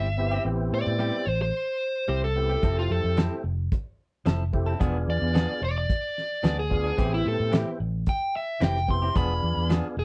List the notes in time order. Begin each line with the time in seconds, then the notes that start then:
Already playing: G1 E5
0.17 B3 C4 E4 G4
0.31 C4 E4 G4
0.44 A1 B3 C4 E4 G4
0.72 A2 D5
0.87 A2
0.99 G3 C4 E4 G4
1.27 A1 C5
1.42 C5
2.08 C2 G3 C4 E4 G4
2.24 A4
2.35 B3 C4 E4 G4
2.49 C4 E4 G4
2.62 F1 F3 A3 C4 E4 G4 A4, kick, closed hi-hat
2.79 F4
2.90 F2 A4
3.04 F2
3.17 F3 C4 E4 A4, snare, closed hi-hat
3.44 F1
3.72 kick, closed hi-hat
4.26 F1 F3 C4 E4 A4, snare, closed hi-hat
4.53 A3 C4 E4 G4, kick
4.66 C4 E4 A4
4.79 E1 F3 B3 D4 F4 G#4, kick, closed hi-hat
5.08 E2 D5
5.22 E2
5.34 F3 B3 D4 G#4, snare, closed hi-hat
5.62 E1 D5
5.78 D5
5.90 kick, closed hi-hat
6.18 snare
6.43 D2 F3 B3 D4 G#4, snare, closed hi-hat
6.59 G#4
6.70 B3 D4 F4 G#4, kick
6.84 B3 D4 G#4
6.97 A1 E3 B3 C4 E4 G4, kick, closed hi-hat
7.14 E4
7.26 A2 A4
7.40 A2
7.52 E3 C4 E4 G4, snare, closed hi-hat
7.80 A1
8.06 G5, kick, closed hi-hat
8.36 E5
8.60 F1 E3 C4 E4 G4 G5, snare, closed hi-hat
8.77 snare
8.88 B3 C4 E4 G4 C6, kick
9.02 C4 E4 G4
9.14 E1 F3 B3 D4 F4 G#4 B5, kick, closed hi-hat
9.43 E2
9.56 E2
9.69 F3 B3 D4 G#4, snare, closed hi-hat
9.97 E1 G#4